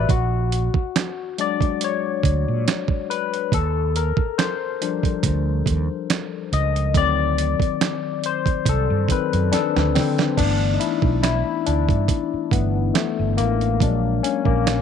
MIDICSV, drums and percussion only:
0, 0, Header, 1, 2, 480
1, 0, Start_track
1, 0, Tempo, 857143
1, 52, Time_signature, 4, 2, 24, 8
1, 8298, End_track
2, 0, Start_track
2, 0, Title_t, "Drums"
2, 50, Note_on_c, 9, 36, 110
2, 53, Note_on_c, 9, 42, 63
2, 106, Note_off_c, 9, 36, 0
2, 109, Note_off_c, 9, 42, 0
2, 293, Note_on_c, 9, 42, 60
2, 349, Note_off_c, 9, 42, 0
2, 415, Note_on_c, 9, 36, 90
2, 471, Note_off_c, 9, 36, 0
2, 537, Note_on_c, 9, 38, 102
2, 538, Note_on_c, 9, 42, 77
2, 543, Note_on_c, 9, 26, 85
2, 593, Note_off_c, 9, 38, 0
2, 594, Note_off_c, 9, 42, 0
2, 599, Note_off_c, 9, 26, 0
2, 775, Note_on_c, 9, 42, 61
2, 831, Note_off_c, 9, 42, 0
2, 899, Note_on_c, 9, 36, 93
2, 907, Note_on_c, 9, 42, 33
2, 955, Note_off_c, 9, 36, 0
2, 963, Note_off_c, 9, 42, 0
2, 1013, Note_on_c, 9, 42, 79
2, 1069, Note_off_c, 9, 42, 0
2, 1251, Note_on_c, 9, 36, 78
2, 1260, Note_on_c, 9, 42, 59
2, 1307, Note_off_c, 9, 36, 0
2, 1316, Note_off_c, 9, 42, 0
2, 1499, Note_on_c, 9, 42, 78
2, 1500, Note_on_c, 9, 38, 110
2, 1507, Note_on_c, 9, 26, 86
2, 1555, Note_off_c, 9, 42, 0
2, 1556, Note_off_c, 9, 38, 0
2, 1563, Note_off_c, 9, 26, 0
2, 1613, Note_on_c, 9, 36, 101
2, 1669, Note_off_c, 9, 36, 0
2, 1742, Note_on_c, 9, 42, 56
2, 1798, Note_off_c, 9, 42, 0
2, 1868, Note_on_c, 9, 42, 34
2, 1924, Note_off_c, 9, 42, 0
2, 1971, Note_on_c, 9, 36, 118
2, 1976, Note_on_c, 9, 42, 70
2, 2027, Note_off_c, 9, 36, 0
2, 2032, Note_off_c, 9, 42, 0
2, 2216, Note_on_c, 9, 42, 66
2, 2272, Note_off_c, 9, 42, 0
2, 2334, Note_on_c, 9, 36, 96
2, 2390, Note_off_c, 9, 36, 0
2, 2458, Note_on_c, 9, 38, 113
2, 2458, Note_on_c, 9, 42, 77
2, 2464, Note_on_c, 9, 26, 80
2, 2514, Note_off_c, 9, 38, 0
2, 2514, Note_off_c, 9, 42, 0
2, 2520, Note_off_c, 9, 26, 0
2, 2698, Note_on_c, 9, 42, 66
2, 2754, Note_off_c, 9, 42, 0
2, 2819, Note_on_c, 9, 36, 86
2, 2828, Note_on_c, 9, 42, 36
2, 2875, Note_off_c, 9, 36, 0
2, 2884, Note_off_c, 9, 42, 0
2, 2929, Note_on_c, 9, 36, 91
2, 2932, Note_on_c, 9, 42, 92
2, 2985, Note_off_c, 9, 36, 0
2, 2988, Note_off_c, 9, 42, 0
2, 3169, Note_on_c, 9, 36, 85
2, 3176, Note_on_c, 9, 42, 64
2, 3225, Note_off_c, 9, 36, 0
2, 3232, Note_off_c, 9, 42, 0
2, 3415, Note_on_c, 9, 42, 86
2, 3417, Note_on_c, 9, 38, 106
2, 3424, Note_on_c, 9, 26, 82
2, 3471, Note_off_c, 9, 42, 0
2, 3473, Note_off_c, 9, 38, 0
2, 3480, Note_off_c, 9, 26, 0
2, 3656, Note_on_c, 9, 42, 59
2, 3712, Note_off_c, 9, 42, 0
2, 3786, Note_on_c, 9, 42, 37
2, 3842, Note_off_c, 9, 42, 0
2, 3889, Note_on_c, 9, 36, 109
2, 3891, Note_on_c, 9, 42, 74
2, 3945, Note_off_c, 9, 36, 0
2, 3947, Note_off_c, 9, 42, 0
2, 4135, Note_on_c, 9, 42, 67
2, 4191, Note_off_c, 9, 42, 0
2, 4253, Note_on_c, 9, 36, 92
2, 4267, Note_on_c, 9, 42, 33
2, 4309, Note_off_c, 9, 36, 0
2, 4323, Note_off_c, 9, 42, 0
2, 4375, Note_on_c, 9, 38, 111
2, 4376, Note_on_c, 9, 42, 79
2, 4381, Note_on_c, 9, 26, 85
2, 4431, Note_off_c, 9, 38, 0
2, 4432, Note_off_c, 9, 42, 0
2, 4437, Note_off_c, 9, 26, 0
2, 4612, Note_on_c, 9, 42, 63
2, 4668, Note_off_c, 9, 42, 0
2, 4736, Note_on_c, 9, 36, 86
2, 4742, Note_on_c, 9, 42, 34
2, 4792, Note_off_c, 9, 36, 0
2, 4798, Note_off_c, 9, 42, 0
2, 4847, Note_on_c, 9, 36, 93
2, 4851, Note_on_c, 9, 42, 91
2, 4903, Note_off_c, 9, 36, 0
2, 4907, Note_off_c, 9, 42, 0
2, 5088, Note_on_c, 9, 36, 84
2, 5095, Note_on_c, 9, 42, 68
2, 5144, Note_off_c, 9, 36, 0
2, 5151, Note_off_c, 9, 42, 0
2, 5226, Note_on_c, 9, 42, 35
2, 5282, Note_off_c, 9, 42, 0
2, 5335, Note_on_c, 9, 42, 90
2, 5338, Note_on_c, 9, 38, 59
2, 5391, Note_off_c, 9, 42, 0
2, 5394, Note_off_c, 9, 38, 0
2, 5468, Note_on_c, 9, 38, 61
2, 5524, Note_off_c, 9, 38, 0
2, 5575, Note_on_c, 9, 46, 43
2, 5578, Note_on_c, 9, 38, 88
2, 5631, Note_off_c, 9, 46, 0
2, 5634, Note_off_c, 9, 38, 0
2, 5703, Note_on_c, 9, 42, 31
2, 5706, Note_on_c, 9, 38, 84
2, 5759, Note_off_c, 9, 42, 0
2, 5762, Note_off_c, 9, 38, 0
2, 5809, Note_on_c, 9, 36, 104
2, 5811, Note_on_c, 9, 49, 80
2, 5816, Note_on_c, 9, 42, 68
2, 5865, Note_off_c, 9, 36, 0
2, 5867, Note_off_c, 9, 49, 0
2, 5872, Note_off_c, 9, 42, 0
2, 6052, Note_on_c, 9, 42, 66
2, 6108, Note_off_c, 9, 42, 0
2, 6173, Note_on_c, 9, 36, 98
2, 6229, Note_off_c, 9, 36, 0
2, 6291, Note_on_c, 9, 38, 94
2, 6292, Note_on_c, 9, 42, 84
2, 6298, Note_on_c, 9, 26, 78
2, 6347, Note_off_c, 9, 38, 0
2, 6348, Note_off_c, 9, 42, 0
2, 6354, Note_off_c, 9, 26, 0
2, 6533, Note_on_c, 9, 42, 64
2, 6589, Note_off_c, 9, 42, 0
2, 6656, Note_on_c, 9, 36, 78
2, 6664, Note_on_c, 9, 42, 31
2, 6712, Note_off_c, 9, 36, 0
2, 6720, Note_off_c, 9, 42, 0
2, 6767, Note_on_c, 9, 36, 89
2, 6769, Note_on_c, 9, 42, 79
2, 6823, Note_off_c, 9, 36, 0
2, 6825, Note_off_c, 9, 42, 0
2, 7008, Note_on_c, 9, 36, 78
2, 7016, Note_on_c, 9, 42, 65
2, 7064, Note_off_c, 9, 36, 0
2, 7072, Note_off_c, 9, 42, 0
2, 7252, Note_on_c, 9, 42, 79
2, 7254, Note_on_c, 9, 38, 111
2, 7261, Note_on_c, 9, 26, 76
2, 7308, Note_off_c, 9, 42, 0
2, 7310, Note_off_c, 9, 38, 0
2, 7317, Note_off_c, 9, 26, 0
2, 7493, Note_on_c, 9, 42, 58
2, 7549, Note_off_c, 9, 42, 0
2, 7623, Note_on_c, 9, 42, 30
2, 7679, Note_off_c, 9, 42, 0
2, 7730, Note_on_c, 9, 36, 103
2, 7737, Note_on_c, 9, 42, 67
2, 7786, Note_off_c, 9, 36, 0
2, 7793, Note_off_c, 9, 42, 0
2, 7976, Note_on_c, 9, 42, 67
2, 8032, Note_off_c, 9, 42, 0
2, 8094, Note_on_c, 9, 36, 86
2, 8150, Note_off_c, 9, 36, 0
2, 8215, Note_on_c, 9, 38, 101
2, 8216, Note_on_c, 9, 42, 79
2, 8221, Note_on_c, 9, 26, 82
2, 8271, Note_off_c, 9, 38, 0
2, 8272, Note_off_c, 9, 42, 0
2, 8277, Note_off_c, 9, 26, 0
2, 8298, End_track
0, 0, End_of_file